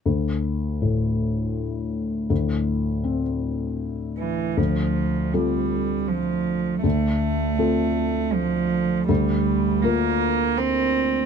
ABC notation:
X:1
M:3/4
L:1/8
Q:1/4=80
K:Dm
V:1 name="Felt piano"
D,,2 A,,4 | D,,2 C4 | D,,2 [CFA]4 | D,,2 [CFA]4 |
D,,2 [B,FB]4 |]
V:2 name="Cello" clef=bass
z6 | z4 z E, | F,2 G,2 F,2 | A,4 F,2 |
G,2 B,2 C2 |]